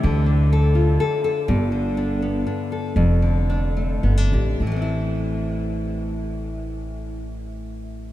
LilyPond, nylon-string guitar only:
\new Staff \with { instrumentName = "Nylon-string guitar" } { \time 3/4 \key a \minor \tempo 4 = 110 << { r4 a'8 f'8 a'8 a'8 | r4 d'8 b8 d'8 a'8 | r4 d'8 a8 b16 d'16 g'8 | <e a c' e'>2.~ |
<e a c' e'>2. | } \\ { d8 d'2~ d'8 | g,8 d2~ d8 | f,8 d2~ d8 | a,2.~ |
a,2. | } >> }